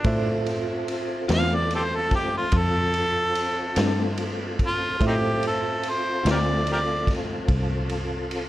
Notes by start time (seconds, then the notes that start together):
Already playing: D4
0.04 A2 C4 F4 A4 C5 E5, kick, ride
0.46 ride
0.88 ride
1.28 E2 D3 A3 C4 F4, snare, ride
1.34 F5
1.55 D5
1.71 ride
1.75 G4 A4 C5
1.96 A4
2.11 kick, snare, ride
2.15 G4
2.37 F4
2.52 F2, kick, ride
2.57 A4
2.94 ride
3.35 ride
3.76 G2 D3 A3 C4 F4, snare, ride
4.18 ride
4.59 kick, ride
4.67 F4
5.00 A2 C4 F4 A4 C5 E5, kick, ride
5.07 C4 D#4 G4
5.43 ride
5.47 A4
5.83 ride
5.90 C5
6.23 D2 D3 A3 C4 F4, snare, ride
6.31 G4 A#4 D5
6.67 ride
6.73 G4 A#4 D5
7.07 kick, snare, ride
7.48 C2, kick, ride
7.89 ride
8.31 ride